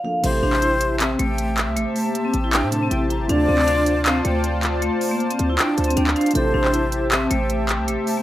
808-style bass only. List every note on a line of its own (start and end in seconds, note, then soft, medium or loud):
0.24 0.42 A1 loud
0.43 1.16 A1 loud
1.19 1.69 A1 loud
1.68 1.78 C2 loud
1.76 1.86 A1 loud
2.34 2.65 A1 loud
2.63 2.90 A2 loud
2.91 3.22 A1 loud
3.20 3.29 G1 loud
3.29 3.48 D2 loud
3.48 4.22 D2 loud
4.25 4.90 D2 loud
5.39 5.58 D2 loud
5.78 5.96 D2 loud
5.97 6.15 D2 loud
6.35 6.54 A1 loud
6.54 7.28 A1 loud
7.31 7.81 A1 loud
7.79 7.90 C2 loud
7.88 7.98 A1 loud